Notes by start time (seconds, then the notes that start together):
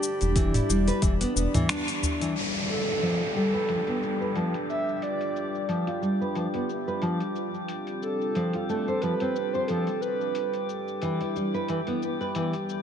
Already playing: G3 D4 E4 G4 D5 B5
0.03 shaker
0.21 E1, open hi-hat, shaker
0.36 E3, kick, open hi-hat, shaker
0.54 E4, mid tom, open hi-hat, shaker
0.69 E1 G3, shaker
0.88 B4, open hi-hat, shaker
1.02 E1 E3, kick, open hi-hat, shaker
1.21 B3, open hi-hat, shaker
1.36 E1 B3, shaker
1.54 E3, mid tom, open hi-hat, udu, shaker
1.69 D4, finger snap, open hi-hat, shaker
1.88 open hi-hat, shaker
2.03 udu, shaker
2.21 E3, open hi-hat, shaker
2.35 G3 G4, open hi-hat, downlifter, shaker
2.52 F4, open hi-hat, shaker
2.69 A4, shaker
3.02 F3, open hi-hat, shaker
3.21 F4, open hi-hat
3.35 G3 A4, shaker
3.54 B4, shaker
3.69 F3, open hi-hat, shaker
3.87 B3, open hi-hat
4.03 shaker
4.21 B4, shaker
4.36 F3, open hi-hat, shaker
4.54 open hi-hat, shaker
4.69 E5, shaker
4.89 shaker
4.96 E5
5.02 D5, open hi-hat, shaker
5.21 open hi-hat, shaker
5.36 shaker
5.55 shaker
5.69 F3, open hi-hat, shaker
5.87 F4, open hi-hat
6.02 G3, shaker
6.21 B4, shaker
6.35 F3, open hi-hat, shaker
6.54 B3, open hi-hat
6.69 shaker
6.88 B4, shaker
7.02 F3, open hi-hat, shaker
7.20 open hi-hat, shaker
7.36 shaker
7.54 shaker
7.68 C4, open hi-hat, shaker
7.87 open hi-hat, shaker
8.02 A4, shaker
8.21 shaker
8.35 F3, open hi-hat, shaker
8.53 F4, open hi-hat
8.68 A3 A4, shaker
8.88 A4 C5, shaker
9.01 F3 B4, open hi-hat, shaker
9.20 C4, open hi-hat
9.36 shaker
9.53 C5, shaker
9.68 F3 A4, open hi-hat, shaker
9.87 open hi-hat, shaker
10.01 B4, shaker
10.21 shaker
10.35 G3, open hi-hat, shaker
10.54 open hi-hat, shaker
10.69 shaker
10.88 G4, shaker
11.01 E3 E4, open hi-hat, shaker
11.21 E4, open hi-hat
11.36 G3, shaker
11.54 B4, shaker
11.68 E3, open hi-hat, shaker
11.87 B3, open hi-hat
12.02 shaker
12.21 B4, shaker
12.35 E3, open hi-hat, shaker
12.53 open hi-hat, shaker
12.69 shaker